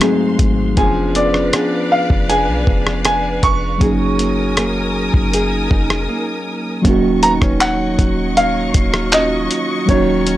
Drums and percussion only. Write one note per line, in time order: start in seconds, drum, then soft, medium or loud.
0.01 cross-stick loud
0.01 closed hi-hat medium
0.39 kick medium
0.39 closed hi-hat medium
0.77 kick loud
0.77 closed hi-hat medium
1.15 closed hi-hat medium
1.34 cross-stick medium
1.53 cross-stick loud
1.53 closed hi-hat medium
2.10 kick loud
2.30 closed hi-hat medium
2.67 kick medium
2.87 cross-stick medium
3.05 cross-stick loud
3.05 closed hi-hat medium
3.43 kick medium
3.43 closed hi-hat medium
3.81 kick loud
3.81 closed hi-hat medium
4.19 closed hi-hat medium
4.57 cross-stick loud
4.57 closed hi-hat medium
5.14 kick loud
5.33 closed hi-hat medium
5.71 kick medium
5.90 cross-stick medium
6.85 kick loud
6.85 closed hi-hat medium
7.23 closed hi-hat medium
7.42 kick medium
7.42 cross-stick medium
7.60 clap loud
7.60 closed hi-hat medium
7.99 kick medium
7.99 closed hi-hat medium
8.37 closed hi-hat medium
8.74 kick medium
8.74 closed hi-hat medium
8.94 cross-stick loud
9.12 clap loud
9.12 closed hi-hat medium
9.51 closed hi-hat medium
9.89 kick loud
9.89 closed hi-hat medium
10.27 closed hi-hat medium